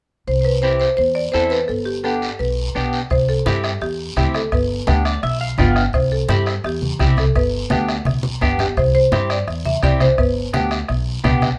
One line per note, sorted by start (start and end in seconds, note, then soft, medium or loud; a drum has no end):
0.27 0.84 C2 medium
0.27 0.40 C5 medium
0.27 long guiro medium
0.41 0.53 B4 medium
0.41 0.45 C5 medium
0.62 0.88 C4 medium
0.62 0.88 E4 medium
0.62 0.88 G4 medium
0.62 0.70 C5 medium
0.62 short guiro medium
0.80 0.96 C5 medium
0.80 short guiro medium
0.97 1.27 E2 medium
0.97 1.16 C5 medium
0.97 long guiro medium
1.15 1.34 D5 medium
1.32 1.62 E2 medium
1.32 1.58 C4 medium
1.32 1.59 E4 medium
1.32 1.59 A4 medium
1.32 1.49 C5 medium
1.32 short guiro medium
1.50 1.69 B4 medium
1.50 short guiro medium
1.68 2.26 G1 medium
1.68 1.85 A4 medium
1.68 long guiro medium
1.85 1.94 G4 medium
2.04 2.29 B3 medium
2.04 2.29 D4 medium
2.04 2.30 G4 medium
2.04 2.41 A4 medium
2.04 short guiro medium
2.22 short guiro medium
2.39 2.68 B1 medium
2.39 2.89 B4 medium
2.39 long guiro medium
2.75 3.04 B1 medium
2.75 3.00 B3 medium
2.75 3.00 D4 medium
2.75 3.01 G4 medium
2.75 short guiro medium
2.93 short guiro medium
3.10 3.39 C2 medium
3.10 3.29 C5 medium
3.10 bombo low medium
3.10 bombo rim medium
3.10 long guiro medium
3.29 3.47 A4 medium
3.29 high conga soft
3.46 3.74 G2 medium
3.46 3.71 C4 medium
3.46 3.71 E4 medium
3.46 3.79 G4 medium
3.46 3.71 G4 medium
3.46 bombo rim medium
3.46 high conga medium
3.46 short guiro medium
3.64 bombo rim medium
3.64 short guiro medium
3.81 4.10 E2 medium
3.81 4.15 G4 medium
3.81 bombo rim medium
3.81 high conga soft
3.81 long guiro medium
4.16 4.45 D2 medium
4.16 4.42 C4 medium
4.16 4.42 E4 medium
4.16 4.42 G4 medium
4.16 bombo low medium
4.16 bombo rim medium
4.16 high conga medium
4.16 short guiro medium
4.34 4.53 A4 medium
4.34 bombo rim medium
4.34 short guiro medium
4.52 4.81 G1 medium
4.52 5.55 B4 medium
4.52 bombo low medium
4.52 bombo rim medium
4.52 long guiro medium
4.70 high conga soft
4.87 5.16 D2 loud
4.87 5.12 B3 medium
4.87 5.13 D4 medium
4.87 5.05 G4 medium
4.87 bombo rim medium
4.87 high conga medium
4.87 short guiro medium
5.05 5.22 D5 medium
5.05 bombo rim medium
5.05 short guiro medium
5.23 5.51 B1 medium
5.23 5.40 E5 medium
5.23 bombo rim medium
5.23 high conga soft
5.23 long guiro medium
5.41 5.57 F5 medium
5.58 5.87 G1 medium
5.58 5.83 B3 medium
5.58 5.83 D4 medium
5.58 5.84 F4 medium
5.58 5.92 G5 medium
5.58 bombo low medium
5.58 bombo rim medium
5.58 high conga medium
5.58 short guiro medium
5.76 bombo rim medium
5.76 short guiro medium
5.93 6.22 C2 medium
5.93 6.10 C5 medium
5.93 bombo low medium
5.93 bombo rim medium
5.93 long guiro medium
6.11 6.28 A4 medium
6.11 high conga soft
6.28 6.57 G2 medium
6.28 6.54 C4 medium
6.28 6.54 E4 soft
6.28 6.54 G4 medium
6.28 6.65 G4 medium
6.28 bombo rim medium
6.28 high conga medium
6.28 short guiro medium
6.46 bombo rim medium
6.46 short guiro medium
6.64 6.93 E2 medium
6.64 6.98 G4 medium
6.64 bombo rim medium
6.64 high conga soft
6.64 long guiro medium
6.82 high conga medium
6.99 7.28 C2 medium
6.99 7.25 C4 medium
6.99 7.25 E4 soft
6.99 7.25 G4 medium
6.99 bombo low medium
6.99 bombo rim medium
6.99 high conga medium
6.99 short guiro medium
7.17 7.37 A4 medium
7.17 bombo rim medium
7.17 high conga medium
7.17 short guiro medium
7.35 7.64 G1 medium
7.35 8.38 B4 medium
7.35 bombo low medium
7.35 bombo rim medium
7.35 long guiro medium
7.52 high conga soft
7.70 7.99 D2 loud
7.70 7.95 B3 medium
7.70 7.96 D4 medium
7.70 7.96 G4 medium
7.70 bombo rim medium
7.70 high conga medium
7.70 short guiro medium
7.88 bombo rim medium
7.88 short guiro medium
8.05 8.34 B1 medium
8.05 bombo rim medium
8.05 high conga medium
8.05 long guiro medium
8.23 high conga medium
8.41 8.70 G1 medium
8.41 8.66 B3 medium
8.41 8.66 D4 medium
8.41 8.67 G4 medium
8.41 bombo low medium
8.41 bombo rim medium
8.41 low conga medium
8.41 short guiro medium
8.59 8.68 G4 medium
8.59 bombo rim medium
8.59 low conga medium
8.59 short guiro medium
8.77 9.05 C2 medium
8.77 8.94 C5 medium
8.77 bombo low medium
8.77 bombo rim medium
8.77 long guiro medium
8.94 9.31 C5 medium
8.94 high conga soft
9.12 9.40 G2 medium
9.12 9.37 C4 medium
9.12 9.37 E4 soft
9.12 9.37 G4 medium
9.12 bombo rim medium
9.12 high conga medium
9.12 short guiro medium
9.30 9.67 D5 medium
9.30 bombo rim medium
9.30 short guiro medium
9.47 9.76 E2 medium
9.47 bombo rim medium
9.47 high conga soft
9.47 long guiro medium
9.65 9.82 E5 medium
9.65 high conga medium
9.82 10.11 C2 medium
9.82 10.07 C4 medium
9.82 10.08 E4 medium
9.82 10.08 G4 medium
9.82 10.00 D5 medium
9.82 bombo low medium
9.82 bombo rim medium
9.82 high conga medium
9.82 short guiro medium
10.00 10.18 C5 medium
10.00 bombo rim medium
10.00 high conga medium
10.00 short guiro medium
10.18 10.46 G1 medium
10.18 11.21 B4 medium
10.18 bombo low medium
10.18 bombo rim medium
10.18 long guiro medium
10.36 high conga soft
10.53 10.82 D2 medium
10.53 10.78 B3 medium
10.53 10.78 D4 medium
10.53 10.79 G4 medium
10.53 bombo rim medium
10.53 high conga medium
10.53 short guiro medium
10.71 bombo rim medium
10.71 short guiro medium
10.88 11.17 B1 medium
10.88 bombo rim medium
10.88 high conga soft
10.88 long guiro medium
11.24 11.53 B1 medium
11.24 11.49 B3 medium
11.24 11.49 D4 medium
11.24 11.49 G4 medium
11.24 bombo low medium
11.24 bombo rim medium
11.24 high conga medium
11.24 short guiro medium
11.42 bombo rim medium
11.42 high conga medium
11.42 short guiro medium